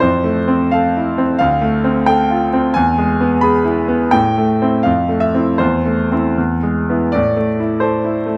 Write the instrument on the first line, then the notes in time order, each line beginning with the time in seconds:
grand piano
0.00 F2 C5
0.24 A3
0.48 C4
0.71 A4 F5
0.97 E4
1.18 C4
1.39 D2 F5
1.62 A3
1.84 C4
2.06 A4 G5
2.30 F4
2.53 C4
2.74 E2 G#5
2.98 G#3
3.21 B3
3.41 G#4 B5
3.65 E4
3.88 B3
4.11 A2 G5
4.38 A3
4.62 C4 E4
4.83 F2 F5
5.09 A3
5.20 E5
5.35 C4 E4
5.58 E2 C5
5.86 A3
6.11 C4 E4
6.38 E2
6.63 G#3
6.90 B3 E4
7.12 A2 D5
7.37 A3
7.60 E4
7.80 A4 C5
8.04 E4
8.26 A3